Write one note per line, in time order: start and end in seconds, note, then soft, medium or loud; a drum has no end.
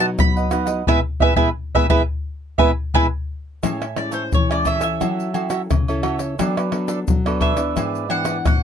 0.00 0.15 B2 medium
0.00 0.18 F#3 medium
0.00 0.46 B3 medium
0.00 0.46 D#4 medium
0.00 0.05 A5 loud
0.19 0.51 F#3 medium
0.19 0.67 B5 loud
0.19 pandeiro medium
0.19 tamborim medium
0.19 shaker medium
0.19 surdo loud
0.36 0.50 B4 soft
0.36 0.51 D#5 soft
0.36 0.51 F#5 soft
0.36 pandeiro soft
0.36 shaker soft
0.51 0.81 F#3 medium
0.51 0.82 B3 soft
0.51 0.82 D#4 medium
0.51 0.68 F#4 medium
0.51 0.67 B4 medium
0.51 0.66 D#5 medium
0.51 0.65 F#5 medium
0.51 pandeiro medium
0.51 tamborim medium
0.51 shaker medium
0.66 0.85 B4 soft
0.66 0.84 D#5 soft
0.66 0.84 F#5 medium
0.66 pandeiro medium
0.66 shaker medium
0.87 0.99 G#3 loud
0.87 0.99 B3 medium
0.87 0.99 E4 medium
0.87 0.98 G#4 medium
0.87 0.98 B4 medium
0.87 0.99 B4 loud
0.87 0.98 E5 medium
0.87 0.99 E5 loud
0.87 0.99 G#5 medium
0.87 surdo loud
1.20 1.32 G#3 medium
1.20 1.32 B3 medium
1.20 1.32 E4 medium
1.20 1.32 G#4 medium
1.20 1.32 B4 medium
1.20 1.33 B4 medium
1.20 1.32 E5 medium
1.20 1.33 E5 medium
1.20 1.33 G#5 medium
1.20 surdo loud
1.36 1.49 G#3 loud
1.36 1.49 B3 medium
1.36 1.49 E4 loud
1.36 1.49 G#4 medium
1.36 1.49 B4 medium
1.36 1.49 E5 medium
1.36 1.48 E5 medium
1.36 1.49 G#5 medium
1.36 surdo loud
1.75 1.86 G#3 medium
1.75 1.86 B3 medium
1.75 1.86 E4 medium
1.75 1.85 G#4 medium
1.75 1.85 B4 medium
1.75 1.86 B4 medium
1.75 1.85 E5 medium
1.75 1.86 E5 medium
1.75 1.86 G#5 medium
1.75 surdo loud
1.89 2.01 G#3 medium
1.89 2.01 B3 loud
1.89 2.01 E4 medium
1.89 2.01 G#4 medium
1.89 2.01 B4 loud
1.89 2.01 B4 medium
1.89 2.01 E5 loud
1.89 2.02 E5 medium
1.89 2.01 G#5 medium
1.89 surdo loud
2.58 2.71 G#3 loud
2.58 2.71 B3 loud
2.58 2.71 E4 loud
2.58 2.70 G#4 medium
2.58 2.70 B4 medium
2.58 2.70 E5 loud
2.58 2.70 E5 medium
2.58 2.70 G#5 medium
2.58 surdo loud
2.94 3.06 G#3 medium
2.94 3.06 B3 loud
2.94 3.06 E4 loud
2.94 3.05 G#4 loud
2.94 3.06 B4 loud
2.94 3.06 B4 medium
2.94 3.05 E5 medium
2.94 3.06 E5 medium
2.94 3.06 G#5 loud
2.94 surdo loud
3.63 4.29 A2 medium
3.63 3.84 G#3 medium
3.63 3.84 C#4 medium
3.63 3.85 E4 medium
3.63 3.79 A4 medium
3.63 3.79 C#5 medium
3.63 3.80 E5 medium
3.63 3.79 G#5 medium
3.63 pandeiro medium
3.63 tamborim medium
3.63 low agogo medium
3.63 shaker medium
3.63 surdo medium
3.80 4.11 C#5 soft
3.80 4.11 E5 soft
3.80 4.11 G#5 soft
3.80 pandeiro soft
3.80 tamborim medium
3.80 shaker soft
3.96 4.30 G#3 soft
3.96 4.30 C#4 medium
3.96 4.30 E4 medium
3.96 4.13 D5 medium
3.96 pandeiro medium
3.96 tamborim medium
4.11 4.22 A4 medium
4.11 4.31 C5 medium
4.11 4.22 C#5 medium
4.11 4.23 E5 medium
4.11 4.23 G#5 medium
4.11 pandeiro medium
4.11 shaker medium
4.32 4.98 E3 medium
4.32 4.50 C#5 medium
4.32 pandeiro medium
4.32 shaker medium
4.32 surdo loud
4.50 4.79 G#3 medium
4.50 4.80 C#4 medium
4.50 4.80 E4 medium
4.50 4.64 C#5 soft
4.50 4.68 D5 medium
4.50 4.65 E5 soft
4.50 4.65 G#5 soft
4.50 pandeiro soft
4.50 tamborim medium
4.50 high agogo medium
4.50 shaker soft
4.65 4.82 A4 medium
4.65 4.81 C#5 medium
4.65 4.80 E5 medium
4.65 4.82 E5 medium
4.65 4.79 G#5 medium
4.65 pandeiro medium
4.65 high agogo medium
4.65 shaker medium
4.65 surdo medium
4.80 5.29 C#4 medium
4.80 5.29 E4 medium
4.80 5.29 A4 medium
4.80 4.99 C#5 soft
4.80 4.98 E5 soft
4.80 5.49 E5 medium
4.80 4.98 G#5 soft
4.80 pandeiro medium
4.80 tamborim medium
4.80 shaker medium
5.00 5.67 F#3 medium
5.00 5.32 F#4 medium
5.00 5.34 A4 medium
5.00 5.34 C#5 medium
5.00 5.35 E5 medium
5.00 pandeiro medium
5.00 tamborim medium
5.00 low agogo medium
5.00 shaker medium
5.00 surdo soft
5.20 pandeiro soft
5.20 shaker soft
5.34 5.81 C#4 medium
5.34 5.82 E4 medium
5.34 5.49 F#4 soft
5.34 5.49 A4 soft
5.34 5.82 A4 medium
5.34 5.50 C#5 soft
5.34 5.50 E5 medium
5.34 pandeiro medium
5.34 low agogo medium
5.50 5.61 F#4 medium
5.50 5.61 A4 medium
5.50 5.61 C#5 medium
5.50 5.61 E5 medium
5.50 pandeiro medium
5.50 tamborim medium
5.50 shaker medium
5.70 6.36 C#3 medium
5.70 pandeiro medium
5.70 tamborim medium
5.70 high agogo medium
5.70 shaker medium
5.70 surdo loud
5.88 6.34 C#4 medium
5.88 6.35 E4 medium
5.88 6.35 A4 medium
5.88 6.02 A4 soft
5.88 6.03 C#5 soft
5.88 6.03 E5 soft
5.88 pandeiro soft
5.88 high agogo medium
5.88 shaker soft
6.03 6.20 F#4 medium
6.03 6.19 A4 medium
6.03 6.19 C#5 medium
6.03 6.18 E5 medium
6.03 pandeiro medium
6.03 tamborim medium
6.03 high agogo medium
6.19 6.37 A4 soft
6.19 6.37 C#5 soft
6.19 6.36 E5 medium
6.19 pandeiro medium
6.19 shaker medium
6.39 7.05 F#3 medium
6.39 6.68 B3 medium
6.39 6.55 D4 medium
6.39 6.69 D4 medium
6.39 6.55 A4 medium
6.39 6.69 A4 medium
6.39 6.56 B4 medium
6.39 6.56 D5 medium
6.39 pandeiro medium
6.39 tamborim medium
6.39 low agogo medium
6.39 shaker medium
6.39 surdo medium
6.57 6.87 A4 soft
6.57 6.88 B4 soft
6.57 6.88 D5 medium
6.57 pandeiro soft
6.57 tamborim medium
6.57 shaker soft
6.72 7.19 B3 soft
6.72 7.19 D4 medium
6.72 7.20 A4 medium
6.72 pandeiro soft
6.72 tamborim medium
6.88 6.98 D4 medium
6.88 6.99 A4 medium
6.88 6.99 B4 medium
6.88 6.99 D5 medium
6.88 pandeiro medium
6.88 shaker medium
7.08 7.56 F#3 medium
7.08 pandeiro medium
7.08 shaker medium
7.08 surdo medium
7.26 7.55 B3 medium
7.26 7.55 D4 medium
7.26 7.40 A4 soft
7.26 7.55 A4 medium
7.26 7.40 B4 soft
7.26 7.41 D5 medium
7.26 pandeiro soft
7.26 tamborim medium
7.26 high agogo medium
7.26 shaker soft
7.40 7.57 D4 medium
7.40 7.57 A4 medium
7.40 7.56 B4 medium
7.40 7.55 D5 medium
7.40 8.07 E5 medium
7.40 pandeiro medium
7.40 high agogo medium
7.40 surdo medium
7.57 8.04 E3 medium
7.57 8.05 B3 medium
7.57 8.05 D4 medium
7.57 7.75 A4 soft
7.57 7.75 B4 soft
7.57 7.74 D5 soft
7.57 pandeiro medium
7.57 tamborim medium
7.57 shaker medium
7.76 8.42 G#2 medium
7.76 8.08 E4 medium
7.76 8.08 G#4 medium
7.76 8.08 B4 medium
7.76 8.09 D5 medium
7.76 pandeiro medium
7.76 tamborim medium
7.76 low agogo medium
7.76 shaker medium
7.76 surdo medium
7.95 pandeiro soft
7.95 shaker soft
8.09 8.57 E3 medium
8.09 8.57 B3 medium
8.09 8.57 D4 medium
8.09 8.24 E4 medium
8.09 8.24 G#4 medium
8.09 8.25 B4 medium
8.09 8.25 D5 medium
8.09 8.45 F#5 medium
8.09 pandeiro medium
8.09 low agogo medium
8.25 8.36 E4 medium
8.25 8.36 G#4 medium
8.25 8.36 B4 medium
8.25 8.36 D5 medium
8.25 pandeiro medium
8.25 tamborim medium
8.25 shaker medium
8.45 8.63 G#2 medium
8.45 8.63 F#5 medium
8.45 pandeiro medium
8.45 tamborim medium
8.45 high agogo medium
8.45 shaker medium
8.45 surdo loud